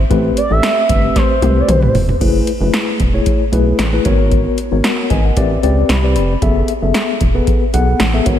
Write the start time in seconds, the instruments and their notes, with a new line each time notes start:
0.10 analog synth bass A1, tine electric piano A3 C4 G4 B4, kick, closed hi-hat
0.37 analog synth lead D5, closed hi-hat
0.50 analog synth bass A1, tine electric piano A3 C4 G4 A4, analog synth lead E5
0.63 snare, closed hi-hat
0.89 analog synth bass G1, tine electric piano A3 C4 G4 B4, analog synth lead E5, kick, closed hi-hat
1.03 tine electric piano A3 C4 G4 B4
1.16 analog synth lead C5, kick, snare, closed hi-hat
1.42 analog synth bass C2, tine electric piano A3 C4 G4 A#4, closed hi-hat, high tom
1.49 tine electric piano B4
1.60 analog synth lead D5
1.68 analog synth bass B1, analog synth lead C5, closed hi-hat, mid tom
1.79 analog synth lead B4, mid tom
1.88 analog synth lead C5
1.94 analog synth bass F1, floor tom, open hi-hat
2.09 floor tom
2.21 analog synth bass F#1, tine electric piano A3 E4 G#4 B4, kick, closed hi-hat, crash
2.47 closed hi-hat
2.61 analog synth bass F#1, tine electric piano A3 E4 G#4 B4
2.74 snare, closed hi-hat
3.00 analog synth bass E1, kick, closed hi-hat
3.13 tine electric piano A3 E4 G#4 C#5
3.26 kick, closed hi-hat
3.52 analog synth bass B1, tine electric piano A3 E4 G#4 B4, closed hi-hat
3.79 analog synth bass A1, snare, closed hi-hat
3.93 tine electric piano A3 E4 G#4 B4
4.05 analog synth bass G#1, tine electric piano B3 F#4 A#4 C#5, kick, closed hi-hat
4.32 kick, closed hi-hat
4.58 closed hi-hat
4.71 analog synth bass G#1, tine electric piano B3 F#4 A#4 C#5
4.84 tine electric piano A#4 F#5, snare, closed hi-hat
5.10 analog synth bass G#1, tine electric piano B4 D#5 G#5, kick, closed hi-hat
5.25 tine electric piano A#4 F#5
5.37 analog synth bass A1, tine electric piano C4 G4 B4 D5 E5, kick, closed hi-hat
5.63 analog synth bass C#2, tine electric piano C4 G4 B4 D5 G5, closed hi-hat
5.89 analog synth bass C2, tine electric piano B5, snare, closed hi-hat
6.03 tine electric piano C4 G4 B4 D5
6.16 analog synth bass F1, tine electric piano B5, closed hi-hat
6.42 analog synth bass F#1, tine electric piano B3 G#4 A4 E5, kick, closed hi-hat
6.68 closed hi-hat
6.82 analog synth bass F#1, tine electric piano B3 G#4 A4 E5
6.94 snare, closed hi-hat
7.21 analog synth bass E1, kick, closed hi-hat
7.34 tine electric piano B3 G#4 A4 B4
7.47 kick, closed hi-hat
7.73 analog synth bass B1, tine electric piano B3 G#4 A4 F#5, closed hi-hat
8.00 analog synth bass A1, snare, closed hi-hat
8.13 tine electric piano B3 G#4 A4 E5
8.26 analog synth bass G#1, tine electric piano B3 F#4 A#4 C#5, kick, closed hi-hat